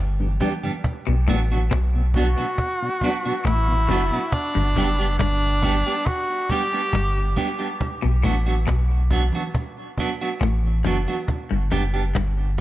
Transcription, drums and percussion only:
0.20 high conga
0.41 cajon bass, high conga
0.64 cajon slap, high conga
0.84 cajon bass, low conga
1.28 cajon bass
1.50 cajon slap
1.71 cajon bass, cajon slap
2.14 cajon bass
2.37 cajon slap
2.58 cajon bass
3.01 cajon bass
3.24 cajon slap
3.45 cajon bass, cajon slap
3.89 cajon bass
4.13 cajon slap
4.32 cajon bass
4.76 cajon bass
4.98 cajon slap
5.19 cajon bass, cajon slap
5.62 cajon bass
5.85 cajon slap
6.06 cajon bass
6.49 cajon bass
6.72 cajon slap
6.93 cajon bass, cajon slap
7.37 cajon bass
7.61 cajon slap
7.81 cajon bass, low conga
8.24 cajon bass, low conga
8.46 cajon slap
8.68 cajon bass, cajon slap
9.10 cajon bass, high conga, low conga
9.33 cajon slap, high conga
9.54 cajon bass, low conga
9.97 cajon bass, low conga
10.20 cajon slap
10.41 cajon bass, cajon slap
10.64 high conga
10.84 cajon bass, high conga
11.08 cajon slap, high conga
11.28 cajon bass, low conga
11.71 cajon bass, low conga
11.94 cajon slap
12.15 cajon bass, cajon slap

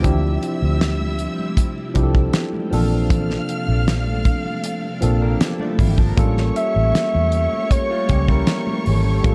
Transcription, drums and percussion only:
0.04 kick, closed hi-hat, muted conga, low conga
0.24 muted conga
0.43 closed hi-hat
0.81 snare, closed hi-hat
1.01 muted conga, high conga
1.19 closed hi-hat
1.39 high conga
1.57 kick, closed hi-hat
1.78 muted conga
1.95 kick, closed hi-hat
2.15 kick
2.33 snare, closed hi-hat
2.53 high conga
2.73 open hi-hat, low conga
3.10 kick, closed hi-hat, low conga
3.30 snare
3.49 closed hi-hat
3.88 snare, closed hi-hat
4.07 muted conga, high conga
4.25 kick, closed hi-hat
4.46 high conga
4.64 closed hi-hat
4.84 muted conga
5.02 closed hi-hat
5.41 snare, closed hi-hat, muted conga
5.60 muted conga, high conga
5.79 kick, open hi-hat, low conga
5.98 kick
6.18 kick, closed hi-hat, muted conga, low conga
6.37 snare
6.56 closed hi-hat
6.95 snare, closed hi-hat, muted conga
7.14 high conga
7.32 closed hi-hat
7.53 high conga
7.71 kick, closed hi-hat, muted conga
8.09 kick, closed hi-hat
8.28 kick
8.47 snare, closed hi-hat
8.67 muted conga, high conga
8.86 open hi-hat, low conga
9.24 kick, closed hi-hat, muted conga, low conga

